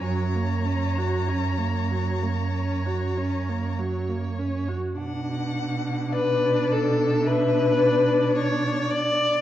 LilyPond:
<<
  \new Staff \with { instrumentName = "Violin" } { \time 4/4 \key b \minor \tempo 4 = 51 ais''2. r4 | fis''4 d''4 e''8 d''4. | }
  \new Staff \with { instrumentName = "Violin" } { \time 4/4 \key b \minor cis''1 | r4 b'8 a'8 b'4 cis''8 d''8 | }
  \new Staff \with { instrumentName = "Viola" } { \time 4/4 \key b \minor fis16 ais16 cis'16 fis'16 cis'16 ais16 fis16 ais16 cis'16 fis'16 cis'16 ais16 fis16 ais16 cis'16 fis'16 | d'1 | }
  \new Staff \with { instrumentName = "Cello" } { \clef bass \time 4/4 \key b \minor fis,1 | b,1 | }
>>